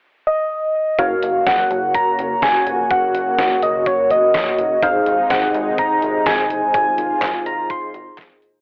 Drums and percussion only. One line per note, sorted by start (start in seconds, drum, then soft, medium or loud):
0.99 kick loud
0.99 closed hi-hat medium
1.23 closed hi-hat medium
1.47 kick loud
1.47 snare loud
1.47 closed hi-hat medium
1.71 closed hi-hat medium
1.94 kick loud
1.94 closed hi-hat medium
2.19 closed hi-hat medium
2.42 kick loud
2.42 snare loud
2.42 closed hi-hat medium
2.67 closed hi-hat medium
2.91 kick loud
2.91 closed hi-hat medium
3.15 closed hi-hat medium
3.38 kick loud
3.38 snare loud
3.38 closed hi-hat medium
3.62 closed hi-hat medium
3.86 kick loud
3.86 closed hi-hat medium
4.10 closed hi-hat medium
4.34 kick loud
4.34 snare loud
4.34 closed hi-hat medium
4.58 closed hi-hat medium
4.82 kick loud
4.82 closed hi-hat medium
5.06 closed hi-hat medium
5.30 kick loud
5.30 snare loud
5.30 closed hi-hat medium
5.54 closed hi-hat medium
5.78 kick loud
5.78 closed hi-hat medium
6.02 closed hi-hat medium
6.26 kick loud
6.26 snare loud
6.26 closed hi-hat medium
6.50 closed hi-hat medium
6.74 kick loud
6.74 closed hi-hat medium
6.98 closed hi-hat medium
7.22 kick loud
7.22 snare loud
7.22 clap medium
7.22 closed hi-hat medium
7.46 closed hi-hat medium
7.70 kick loud
7.70 closed hi-hat medium
7.94 closed hi-hat medium
8.18 kick loud
8.18 snare loud
8.18 clap loud
8.18 closed hi-hat medium
8.42 open hi-hat medium